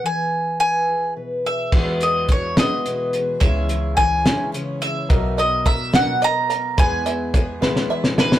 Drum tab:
CC |------------|x-----------|------------|------------|
HH |------------|--x-x-x-x-x-|x-x-x-x-x-x-|x-x-x-x-x-x-|
SD |------------|------o-----|------o-----|------o-----|
BD |------------|o---o-------|o---o-------|o---o-------|

CC |------------|
HH |x-x-x-------|
SD |------oo-ooo|
BD |o---o-------|